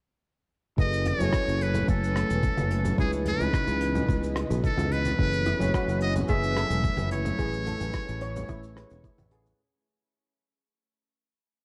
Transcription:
0.77 F#1 E3 F#3 A3 C#4 E4 G#4 A4 B4 D#5 G#5, kick, shaker
0.93 shaker
1.05 C#5, closed hi-hat, high conga
1.18 F#1 F#3 C#4 E4 A4 G#5, low conga, shaker
1.23 C#5
1.32 kick, cross-stick, shaker
1.48 F#1, shaker
1.61 B4, closed hi-hat
1.74 low conga, shaker
1.88 F#1 A4, kick, shaker
2.04 shaker
2.16 cross-stick, closed hi-hat
2.30 E1, shaker
2.43 kick, shaker
2.58 F#1, high conga, shaker
2.71 closed hi-hat
2.85 low conga, shaker
2.97 C#2 C#3 B3 C#4 D#4 E4 G#4 B4 D#5, kick, shaker
3.13 shaker
3.26 B4, closed hi-hat, high conga
3.39 C#2 C#3 C#4 D#4 E4, low conga, shaker
3.43 B4
3.54 kick, cross-stick, shaker
3.67 C#2, shaker
3.81 closed hi-hat
3.95 low conga, shaker
4.09 C#2, kick, shaker
4.23 shaker
4.36 cross-stick, closed hi-hat
4.50 B1, shaker
4.64 A4, kick, shaker
4.77 C#2, high conga, shaker
4.92 B4, closed hi-hat
5.05 low conga, shaker
5.18 F#1 F#3 A3 C#4 E4 G#4 A4 B4 G#5, kick, shaker
5.33 shaker
5.46 E4, closed hi-hat, high conga
5.59 F#1 F#3 A3 C#4 E4 G#5, low conga, shaker
5.63 C#5
5.74 F#4, kick, cross-stick, shaker
5.88 F#1, shaker
6.00 D#5, closed hi-hat
6.15 low conga, shaker
6.28 F#1 G#4 E5, kick, shaker
6.43 shaker
6.57 A4, cross-stick, closed hi-hat
6.70 E1, shaker
6.84 kick, shaker
6.97 F#1, high conga, shaker
7.11 E4 C#5, closed hi-hat
7.25 low conga, shaker
7.38 A1 A3 C#4 E4 G#4 B4 C#5, kick, shaker
7.53 shaker
7.66 A4, closed hi-hat, high conga
7.78 A1 A3 E4 B4 G#5, low conga, shaker
7.82 C#5
7.93 kick, cross-stick, shaker
8.08 A1, shaker
8.21 C#5, closed hi-hat
8.36 low conga, shaker
8.49 A1 E4, kick, shaker
8.63 shaker
8.76 A3 E4 G#4 B4 C#5, cross-stick, closed hi-hat
8.90 E1, shaker
9.04 E4, kick, shaker
9.18 A1, high conga, shaker
9.30 A3 E4 G#4 B4 F#5, closed hi-hat
9.46 low conga, shaker

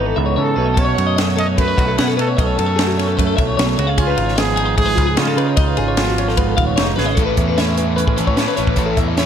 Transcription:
Already playing: G#1 E3 B3 D#4 F#4
0.06 A4
0.16 C#2 G#2 B3 E5
0.26 C#5
0.36 C#3 A4 C#5
0.46 A4
0.56 B1 B2 F#3 A3 C#4 B4
0.66 D#5
0.74 A4, kick, ride
0.78 C#4 C#5
0.85 C#5
0.95 F#2 F#5, ride
1.07 D#5
1.16 F#3 A3 D#5, snare, ride
1.26 C#5
1.37 C#4 A4 D#5, ride
1.47 C#5
1.57 F#2 A3 A4 B4, kick, ride
1.68 C#5
1.77 B1 F#4, kick, ride
1.88 A4
1.98 B2 C#4 B4 F#5, snare, ride
2.08 A4
2.17 B2 C#4 A4 B4, ride
2.27 C#5
2.37 B1 C#4 A4 D#5, kick, ride
2.47 C#5
2.57 F#2 A4, ride
2.66 C#5
2.76 F#3 A3 G#4, snare, ride
2.87 F#4
2.97 C#4 C#5, snare, ride
3.08 A4
3.17 F#2 A3 B4, kick, ride
3.27 A4
3.37 B1 A2 E5, kick, ride
3.47 C#5
3.57 B1 B2 C#5, snare, ride
3.67 A4
3.77 C#2 C#3 F#4 C#5, ride
3.87 G#4 F5
3.98 C#4 F4 G#4, kick, ride
4.07 D#4 B4
4.17 G#1 F5, ride
4.26 C#5, snare
4.36 F3 B3 G#4 D#5, snare, ride
4.46 B4, snare
4.56 D#4 G#4, ride
4.66 B4
4.75 G#2 A3 G#4, kick, ride
4.86 B3 B4
4.96 C#2 F4, kick, ride
5.07 G#4
5.17 C#3 C#4 F4 D#5, snare, ride
5.27 D#4 A4
5.36 C#3 D#4 B4, ride
5.47 C#5
5.57 C#2 D#4 F4 D#5, kick, ride
5.68 B4
5.77 G#1 G#4, ride
5.88 C#5
5.97 F3 B3 G#4, snare, ride
6.08 F#4, snare
6.18 C#4 C#5, ride
6.28 D#4 A4, snare
6.37 G#2 B3 B4, kick, ride
6.47 A4
6.57 D#1 F5, kick, ride
6.67 C#5
6.76 F1 D#4 C#5, snare, ride
6.86 G#4
6.96 G#1 C#3 G#4 B4, snare
7.06 D#5
7.15 A1 A2 E3 A4, kick, closed hi-hat
7.20 A3 C#4 E4 A4
7.26 B4
7.36 E2 E3 G#4, kick, closed hi-hat
7.48 B4
7.58 A3 C#4 E4 A4 E5, snare, closed hi-hat
7.67 C#5
7.77 E3 B4, closed hi-hat
7.86 G#4
7.96 C#4 B4, closed hi-hat
8.07 A1 G#4, kick
8.16 A1 E3 A3 C#4 E4 A4 B4, closed hi-hat
8.27 A2 C#5, kick
8.36 A2 E3 A3 C#4 E4 A4, snare, closed hi-hat
8.48 B4
8.56 A1 A3 C#4 E4 A4 B4 C#5, closed hi-hat
8.67 A1 B4, kick
8.76 A1 A2 E3 A3 C#4 E4 A4 C#5, kick, closed hi-hat
8.86 A4
8.97 E2 E3 E5, kick, closed hi-hat
9.08 D#5
9.17 A3 C#4 E4 A4 C#5, snare, closed hi-hat

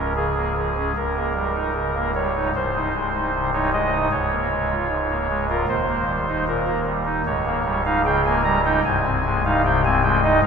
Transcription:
Already playing: C#1 C#2 C#4 A#4
0.16 C#3 G#4
0.36 A#3
0.57 F3
0.77 C#4
0.96 C#1 C#2 A#4
1.16 A#3
1.34 G3
1.55 D#4
1.74 C#3
1.94 A#3
2.15 G3 C#5
2.35 D#4
2.55 C1 C2 C5
2.75 D#4
2.94 G#3
3.13 D#4
3.34 C3
3.53 D#4 C#5
3.73 G#3 D#5
3.92 D#4
4.11 C#1 C#2 C#5
4.31 A#3
4.51 G#3
4.70 F4
4.90 G#2
5.10 A#3
5.29 G#3
5.49 F4 A#4
5.68 D#1 D#2 C5
5.88 A#3
6.07 G3
6.28 D#4
6.48 A#2 A#4
6.67 A#3
6.87 G3
7.05 D#4
7.26 C#1 C#2 C#5
7.46 A#3
7.65 G3
7.85 D#4 F5
8.05 C#3 G5
8.25 A#3 G#5
8.44 G3 A#5
8.65 D#4 G5
8.84 C1 C2 G#5
9.05 C4
9.25 G#3
9.45 D#4 F5
9.65 C3 G5
9.85 C4 G#5
10.03 G#3 G5
10.23 D#4 D#5
10.43 C#1 C#2 F5

